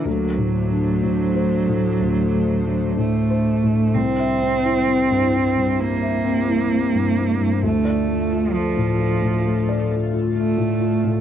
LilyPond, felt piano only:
\new Staff \with { instrumentName = "Felt piano" } { \time 4/4 \key d \minor \tempo 4 = 65 \tuplet 3/2 { d,8 a,8 d'8 a,8 c''8 a,8 d,8 a8 d'8 a,8 c''8 a,8 } | c,16 e''16 c'16 e'16 c'16 g,16 e'16 g,16 c'16 e''16 c'16 e'16 c'16 g,16 e'16 g,16 | d,16 d''16 a16 f'16 a16 a,16 f'16 a,16 a16 d''16 a16 f'16 a16 a,16 f'16 a,16 | }